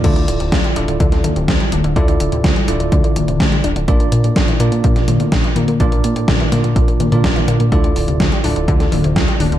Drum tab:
CC |x---------------|----------------|----------------|----------------|
HH |xxxxxxxxxxxxxxxx|xxxxxxxxxxxxxxxx|xxxxxxxxxxxxxxxx|xxxxxxxxxxxxxxxx|
SD |----o----o--o---|----o-------o---|----o----o--o---|----o-o-----o---|
T1 |----------o---o-|----------o-----|----------o---o-|-----o----o--o--|
BD |o---o---o---o---|o---o---o---o---|o---o---o---o---|o---o---o---o---|

CC |----------------|
HH |xxoxxxoxxxoxxxox|
SD |----o----o--o---|
T1 |----------o---o-|
BD |o---o---o---o---|